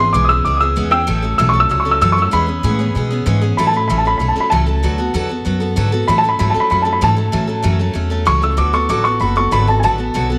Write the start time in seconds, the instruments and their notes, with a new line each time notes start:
Already playing: upright bass G#1, steel-string acoustic guitar G#4, upright piano C6
0.00 steel-string acoustic guitar B3 C#4
0.13 upright bass B1, steel-string acoustic guitar E3 G#3 B3 C#4 G#4, upright piano D6
0.25 upright piano D#6
0.29 steel-string acoustic guitar B3 C#4 G#4, upright piano E6
0.45 upright bass C#2, steel-string acoustic guitar G#3 B3 C#4 G#4, upright piano D6
0.57 steel-string acoustic guitar G#4, upright piano D#6 E6
0.62 steel-string acoustic guitar B3 C#4
0.76 upright bass E2, steel-string acoustic guitar E3 G#3 B3 C#4 G#4
0.91 steel-string acoustic guitar B3 C#4 G#4, upright piano G5 E6
1.07 upright bass A1, steel-string acoustic guitar A2 E3 F#3 A3 C#4 A4
1.22 steel-string acoustic guitar F#3 A3 C#4 A4
1.38 upright bass B1, steel-string acoustic guitar A2 E3 F#3 A3 C#4 A4, upright piano E6
1.49 upright piano C#6
1.54 steel-string acoustic guitar F#3 A3 C#4 A4
1.60 upright piano E6
1.69 upright bass C#2, steel-string acoustic guitar F#3 A3 C#4 A4, upright piano E6
1.80 upright piano C#6
1.85 steel-string acoustic guitar F#3 A3 C#4 A4
1.91 upright piano E6
2.01 upright bass F#2, steel-string acoustic guitar A2 E3 F#3 A3 C#4 A4, upright piano E6
2.12 upright piano C#6
2.17 steel-string acoustic guitar F#3 A3 C#4 A4
2.22 upright piano E6
2.31 upright bass E2, steel-string acoustic guitar E3 G#3 B3 C#4 G#4, upright piano B5
2.47 steel-string acoustic guitar B3 C#4 G#4
2.63 upright bass A2, steel-string acoustic guitar E3 G#3 B3 C#4 G#4
2.79 steel-string acoustic guitar B3 C#4 G#4
2.95 upright bass B2, steel-string acoustic guitar G#3 B3 C#4 G#4
3.10 steel-string acoustic guitar B3 C#4 G#4
3.26 upright bass G#2, steel-string acoustic guitar E3 G#3 B3 C#4 G#4
3.41 steel-string acoustic guitar B3 C#4 G#4
3.57 upright bass A2, steel-string acoustic guitar A2 E3 F#3 A3 C#4 A4, upright piano B5
3.67 upright piano A5
3.73 steel-string acoustic guitar F#3 A3 C#4 A4, upright piano B5
3.88 upright bass A1, steel-string acoustic guitar A2 E3 F#3 A3 C#4 A4, upright piano B5
3.98 upright piano A5
4.05 steel-string acoustic guitar F#3 A3 C#4 A4, upright piano B5
4.18 upright bass B1, steel-string acoustic guitar F#3 A3 C#4 A4, upright piano B5
4.28 upright piano A5
4.36 steel-string acoustic guitar F#3 A3 C#4 A4
4.40 upright piano B5
4.50 upright bass C#2, steel-string acoustic guitar A2 E3 F#3 A3 C#4 A4, upright piano A5
4.66 steel-string acoustic guitar F#3 A3 C#4 A4
4.83 upright bass D2, steel-string acoustic guitar D3 F#3 B3 F#4 A4
4.98 steel-string acoustic guitar B3 F#4 A4
5.14 upright bass E2, steel-string acoustic guitar D3 F#3 B3 F#4 A4
5.29 steel-string acoustic guitar B3 F#4 A4
5.45 upright bass F#2, steel-string acoustic guitar F#3 B3 F#4 A4
5.60 steel-string acoustic guitar B3 F#4 A4
5.76 upright bass G#2, steel-string acoustic guitar D3 F#3 B3 F#4 A4
5.92 steel-string acoustic guitar B3 F#4 A4
6.08 steel-string acoustic guitar A2 E3 F#3 A3 C#4 A4, upright bass A2, upright piano B5
6.18 upright piano A5
6.24 steel-string acoustic guitar F#3 A3 C#4 A4
6.29 upright piano B5
6.39 upright bass G#2, steel-string acoustic guitar A2 E3 F#3 A3 C#4 A4, upright piano B5
6.50 upright piano A5
6.54 steel-string acoustic guitar F#3 A3 C#4 A4, muted upright bass stroke
6.60 upright piano B5
6.70 upright bass F#2, steel-string acoustic guitar F#3 A3 C#4 A4, upright piano B5
6.82 steel-string acoustic guitar A3 C#4 A4, upright piano A5
6.86 steel-string acoustic guitar F#3
6.93 upright piano B5
7.01 upright bass G#2, steel-string acoustic guitar A2 E3 F#3 A3 C#4 A4, upright piano A5
7.16 steel-string acoustic guitar F#3 A3 C#4 A4
7.32 steel-string acoustic guitar A2 E3 F#3 A3 C#4 A4, upright bass A2
7.47 steel-string acoustic guitar F#3 A3 C#4 A4
7.63 upright bass F#2, steel-string acoustic guitar A2 E3 F#3 A3 C#4 A4
7.79 steel-string acoustic guitar F#3 A3 C#4 A4
7.94 upright bass E2, steel-string acoustic guitar F#3 A3 C#4 A4
8.10 steel-string acoustic guitar F#3 A3 C#4 A4
8.25 upright bass C#2, steel-string acoustic guitar A2 E3 F#3 A3 C#4 A4, upright piano C#6
8.42 steel-string acoustic guitar F#3 A3 C#4 A4, upright piano E6
8.57 upright bass D2, steel-string acoustic guitar D3 F#3 B3 F#4 A4, upright piano D6
8.73 steel-string acoustic guitar B3 F#4 A4, upright piano C#6
8.89 upright bass A1, steel-string acoustic guitar D3 F#3 B3 F#4 A4, upright piano D6
9.04 steel-string acoustic guitar B3 F#4 A4, upright piano C#6
9.20 upright bass F#1, steel-string acoustic guitar F#3 B3 F#4 A4, upright piano B5
9.36 steel-string acoustic guitar B3 F#4 A4, upright piano C#6
9.51 upright bass G#1, steel-string acoustic guitar D3 F#3 B3 F#4 A4, upright piano B5
9.67 steel-string acoustic guitar B3 F#4 A4, upright piano A5
9.80 steel-string acoustic guitar D3 F#3 B3 F#4, upright piano G#5
9.84 upright bass A1, steel-string acoustic guitar A4, upright piano A5
9.98 steel-string acoustic guitar B3 F#4 A4
10.14 upright bass B1, steel-string acoustic guitar D3 F#3 B3 F#4 A4
10.30 steel-string acoustic guitar B3 F#4 A4